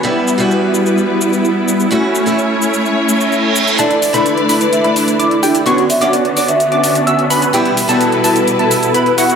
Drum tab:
HH |----------------|----------------|xxoxxxoxxxoxxxox|xxoxxxoxxxoxxxox|
SH |x-xxx-xxx-xxx-xx|x-xxx-xxx-xxx-xx|x-xxx-xxx-xxx-xx|x-xxx-xxx-xxx-xx|

HH |xxoxxxoxxxoxxxox|
SH |x-xxx-xxx-xxx-xx|